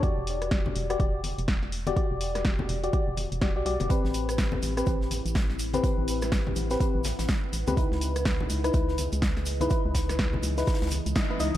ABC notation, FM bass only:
X:1
M:4/4
L:1/16
Q:"Swing 16ths" 1/4=124
K:Ador
V:1 name="FM bass" clef=bass
E,, E,,,4- E,,, E,,,2 E,,,3 E,,,4- E,,, | z E,,,4- E,,, E,,,2 z E,,,2 E,,,2 B,,, B,,, E,,, | z A,,,4- A,,, A,,,2 A,,,3 A,,,4- A,,, | z A,,,4- A,,, A,,,2 z A,,,2 A,,, z2 A,,, ^C,,- |
^C,, C,,4- C,, C,,2 C,,3 C,,4- C,, | z ^C,,4- C,, C,,2 z C,,2 C,, z2 C,, z |]